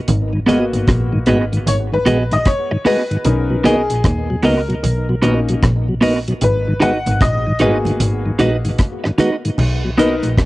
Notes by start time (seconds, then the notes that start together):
0.08 G#1, closed hi-hat, low conga
0.33 G#2 D#3
0.46 G#3 A#3 B3 F#4 G#4 D#5, closed hi-hat, low conga
0.73 G#1, closed hi-hat
0.87 A#1, kick, cross-stick, closed hi-hat, high conga
1.12 G#2 D#3
1.26 G#1 G#3 B3 F#4 G#4 D#5, closed hi-hat, high conga
1.52 G#2 D#3, closed hi-hat
1.66 G#1 C#5, closed hi-hat, low conga
1.92 G#2 D#3 B4
2.06 A#1 G#3 B3 F#4 G#4 D#5, closed hi-hat, low conga
2.31 G#2 D#3 D#5, closed hi-hat
2.45 C#5, kick, cross-stick, closed hi-hat, high conga
2.71 G#2 D#3, muted clean electric guitar stroke
2.85 G#3 B3 F#4 G#4 B4 D#5, open hi-hat, high conga
3.11 G#2 D#3, closed hi-hat
3.25 B1 C#4 D#4 A#4, closed hi-hat, low conga
3.50 B2 F#3
3.64 A#3 B3 D#4 F#4 G#4 A#4 D#5, closed hi-hat, low conga
3.90 A#1, closed hi-hat
4.04 D#2, kick, cross-stick, closed hi-hat, high conga
4.30 B2 F#3
4.43 C#2 A#3 B3 D#4 F#4 A#4 D#5, open hi-hat, high conga
4.69 B2 F#3, closed hi-hat
4.83 B1, closed hi-hat, low conga
5.09 B2 F#3
5.22 A#1 A#3 B3 C#4 D#4 F#4 A#4 D#5, closed hi-hat, low conga
5.49 B2 F#3, closed hi-hat
5.63 A#1, kick, cross-stick, closed hi-hat, high conga
5.88 B2 F#3
6.01 A#3 B3 D#4 F#4 A#4 D#5, open hi-hat, high conga
6.28 B2 F#3, closed hi-hat
6.41 G#1 B4, closed hi-hat, low conga
6.68 G#2 D#3
6.80 G#3 B3 D#4 F#4 B4 D#5 F#5, closed hi-hat, low conga
7.06 G#1, closed hi-hat, high conga
7.21 A#1 D#5, kick, cross-stick, closed hi-hat, high conga
7.47 G#2 D#3
7.59 G#1 G#3 A#3 B3 D#4 F#4 G#4 B4 D#5, closed hi-hat, high conga
7.85 G#2 D#3, closed hi-hat, high conga
8.00 G#1, closed hi-hat, low conga
8.25 G#2 D#3
8.39 A#1 G#3 B3 D#4 F#4 B4 D#5, closed hi-hat, low conga
8.65 G#2 D#3, closed hi-hat
8.78 kick, cross-stick, closed hi-hat, high conga
9.04 G#2 D#3, muted clean electric guitar stroke, cross-stick
9.18 G#3 B3 D#4 F#4 B4 D#5, closed hi-hat, high conga, low conga
9.45 G#2 D#3, closed hi-hat
9.58 B1, crash, low conga
9.85 B2 F#3
9.98 A#3 B3 D#4 F#4 A#4 B4 D#5, closed hi-hat, low conga
10.23 A#1, closed hi-hat, high conga
10.38 D#2, kick, cross-stick, closed hi-hat